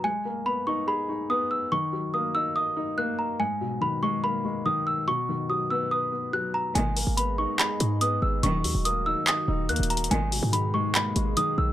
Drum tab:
HH |------------------------|------------------------|------------------------|------------------------|
CP |------------------------|------------------------|------------------------|------------------------|

HH |x--o--x-----x--x--x-----|x--o--x-----x-----xxxxxx|x--o--x-----x--x--x-----|
CP |------------x-----------|------------x-----------|------------x-----------|